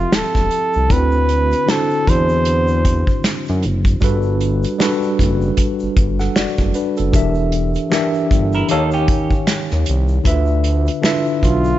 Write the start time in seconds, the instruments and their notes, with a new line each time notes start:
Already playing: tine electric piano F3 C4 G4 A4 E5, flugelhorn F4
0.12 analog synth bass E1, flugelhorn A4, finger snap, snare, closed hi-hat, shaker
0.34 analog synth bass E1, kick, snare, shaker
0.51 closed hi-hat, shaker
0.73 analog synth bass C2, shaker
0.89 analog synth bass D2, tine electric piano D3 C4 D4 E4 F4, flugelhorn B4, kick, closed hi-hat, shaker
0.98 tine electric piano F#4
1.11 shaker
1.29 closed hi-hat, shaker
1.51 closed hi-hat, shaker
1.66 tine electric piano D3 D4 E4 F#4 C5, finger snap, snare, closed hi-hat, shaker
1.71 flugelhorn A4
1.91 shaker
2.07 analog synth bass E2, flugelhorn C5, kick, closed hi-hat
2.29 shaker
2.45 closed hi-hat, shaker
2.68 shaker
2.85 kick, closed hi-hat
3.07 kick, shaker
3.24 finger snap, snare, closed hi-hat, shaker
3.46 analog synth bass F#2, snare, shaker
3.62 analog synth bass F#1, closed hi-hat, shaker
3.84 kick, closed hi-hat, shaker
4.01 analog synth bass G1, tine electric piano G3 D4 F#4 A4 B4, kick, closed hi-hat, shaker
4.22 shaker
4.40 closed hi-hat, shaker
4.63 closed hi-hat, shaker
4.79 tine electric piano G3 D4 F#4 A4 B4, finger snap, snare, closed hi-hat, shaker
5.02 shaker
5.19 analog synth bass F#1, kick, snare, closed hi-hat
5.41 shaker
5.57 kick, closed hi-hat, shaker
5.79 analog synth bass G1, shaker
5.97 analog synth bass G1, kick, closed hi-hat
6.19 tine electric piano A4 F#5, snare, shaker
6.36 analog synth bass F#1, tine electric piano F#4 D5, finger snap, snare, closed hi-hat, shaker
6.57 analog synth bass F#1, kick, snare, shaker
6.74 tine electric piano D4 B4, closed hi-hat, shaker
6.97 analog synth bass F#1, tine electric piano A4, closed hi-hat, shaker
7.12 analog synth bass E1, tine electric piano E3 D4 G4 A#4 E5, kick, closed hi-hat, shaker
7.34 shaker
7.52 closed hi-hat, shaker
7.75 closed hi-hat, shaker
7.90 tine electric piano E3 D4 G4 A#4 E5, finger snap, snare, closed hi-hat, shaker
8.14 shaker
8.31 analog synth bass G1, kick, closed hi-hat
8.53 clean electric guitar E4 A#4, shaker
8.68 analog synth bass D#2, tine electric piano D#3 D#4 G4 C#5 F5, clean electric guitar D#4 A4, closed hi-hat, shaker
8.91 clean electric guitar C#4 G4, shaker
9.08 kick, closed hi-hat
9.30 kick, shaker
9.47 finger snap, snare, closed hi-hat, shaker
9.69 analog synth bass D#2, snare, shaker
9.86 analog synth bass C2, closed hi-hat, shaker
10.08 shaker
10.24 analog synth bass D2, tine electric piano D3 D4 F4 B4 E5, kick, closed hi-hat, shaker
10.46 shaker
10.64 closed hi-hat, shaker
10.87 closed hi-hat, shaker
11.02 tine electric piano D3 D4 E4 B4 E5, finger snap, snare, closed hi-hat, shaker
11.10 tine electric piano F4
11.26 shaker
11.43 analog synth bass B1, flugelhorn F4, kick, snare, closed hi-hat
11.64 shaker